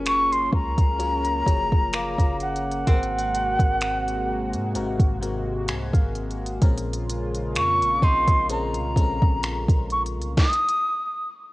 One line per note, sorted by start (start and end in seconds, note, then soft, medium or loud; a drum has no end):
0.00 0.49 F#1 loud
0.00 2.83 C#3 medium
0.00 0.83 F#3 medium
0.00 10.33 A#3 medium
0.00 0.83 C#4 medium
0.00 2.48 C#4 medium
0.00 2.83 C#4 medium
0.00 0.84 F4 medium
0.00 0.84 G#4 medium
0.00 0.84 A#4 loud
0.06 0.33 C#6 loud
0.06 finger snap medium
0.06 closed hi-hat medium
0.32 0.53 C6 loud
0.32 closed hi-hat soft
0.52 1.43 C#2 loud
0.52 2.37 A#5 loud
0.52 kick medium
0.78 kick medium
0.78 closed hi-hat soft
0.99 1.42 F#3 medium
0.99 1.42 C#4 medium
0.99 1.43 F4 medium
0.99 1.43 G#4 medium
0.99 1.43 C#5 medium
0.99 closed hi-hat medium
1.25 closed hi-hat medium
1.46 2.16 F#1 loud
1.46 2.75 F3 medium
1.46 2.75 F#3 medium
1.46 2.75 C#4 medium
1.46 2.75 G#4 medium
1.46 2.75 C#5 medium
1.46 kick medium
1.46 closed hi-hat medium
1.72 kick medium
1.93 5.15 A#3 medium
1.93 finger snap loud
1.93 closed hi-hat medium
2.18 2.84 F#1 loud
2.18 kick medium
2.18 closed hi-hat soft
2.40 5.18 F#5 medium
2.40 closed hi-hat soft
2.56 closed hi-hat soft
2.72 closed hi-hat medium
2.87 3.57 G#1 loud
2.87 4.58 G#2 medium
2.87 6.58 C3 medium
2.87 4.58 G#3 medium
2.87 10.33 G#3 medium
2.87 2.94 A#3 medium
2.87 5.87 C4 medium
2.87 6.59 F#4 medium
2.87 4.59 F#4 medium
2.87 4.59 A#4 medium
2.87 kick loud
2.87 closed hi-hat medium
2.94 4.62 C4 medium
3.03 closed hi-hat medium
3.19 closed hi-hat medium
3.35 closed hi-hat medium
3.59 4.55 G#1 loud
3.59 kick medium
3.59 closed hi-hat soft
3.81 finger snap loud
3.81 closed hi-hat medium
4.08 closed hi-hat soft
4.53 4.76 G#2 loud
4.53 closed hi-hat soft
4.74 4.99 G#1 loud
4.74 5.17 G#2 medium
4.74 5.17 G#3 medium
4.74 5.18 C4 medium
4.74 5.18 F#4 medium
4.74 5.18 A#4 medium
4.74 closed hi-hat medium
5.00 5.70 G#1 loud
5.00 kick loud
5.00 closed hi-hat medium
5.21 6.50 G#2 medium
5.21 6.50 G#3 medium
5.21 6.50 C4 medium
5.21 6.50 F#4 medium
5.21 6.51 A#4 medium
5.21 closed hi-hat medium
5.68 5.93 C2 medium
5.68 5.92 G#5 medium
5.68 finger snap loud
5.68 closed hi-hat medium
5.93 6.59 G#1 loud
5.93 6.58 F5 medium
5.93 kick loud
5.93 closed hi-hat soft
6.15 closed hi-hat soft
6.31 closed hi-hat soft
6.46 closed hi-hat medium
6.61 7.58 A#1 loud
6.61 8.33 A#2 medium
6.61 10.33 C#3 medium
6.61 8.33 G#3 medium
6.61 8.33 C4 medium
6.61 8.34 C#4 medium
6.61 10.33 F4 medium
6.61 8.34 A#4 loud
6.61 kick loud
6.61 closed hi-hat medium
6.78 closed hi-hat medium
6.93 closed hi-hat medium
7.10 closed hi-hat medium
7.35 closed hi-hat soft
7.56 7.83 F2 medium
7.56 8.05 C#6 medium
7.56 finger snap loud
7.56 closed hi-hat medium
7.81 8.02 A#1 loud
7.81 closed hi-hat soft
8.02 8.27 A#1 loud
8.02 10.73 D#4 medium
8.02 8.50 C6 medium
8.02 kick medium
8.28 8.77 A#1 loud
8.28 kick medium
8.28 closed hi-hat soft
8.49 8.92 A#2 medium
8.49 8.92 G#3 medium
8.49 8.92 C4 medium
8.49 8.93 C#4 medium
8.49 8.93 A#4 medium
8.49 9.87 A#5 medium
8.49 closed hi-hat medium
8.74 8.96 C2 loud
8.74 closed hi-hat medium
8.96 9.21 A#1 loud
8.96 10.25 A#2 medium
8.96 10.25 G#3 medium
8.96 10.25 C4 medium
8.96 10.25 C#4 medium
8.96 9.04 A4 medium
8.96 kick medium
8.96 closed hi-hat medium
9.04 10.29 A#4 medium
9.22 9.67 A#1 loud
9.22 kick loud
9.43 finger snap loud
9.43 closed hi-hat medium
9.68 10.18 A#1 loud
9.68 kick loud
9.68 closed hi-hat soft
9.90 10.02 C#6 medium
9.90 closed hi-hat soft
10.06 closed hi-hat medium
10.16 10.36 C2 loud
10.22 closed hi-hat soft
10.37 11.27 D#6 loud
10.37 kick loud
10.37 snare loud
10.37 closed hi-hat medium
10.53 closed hi-hat medium
10.68 closed hi-hat medium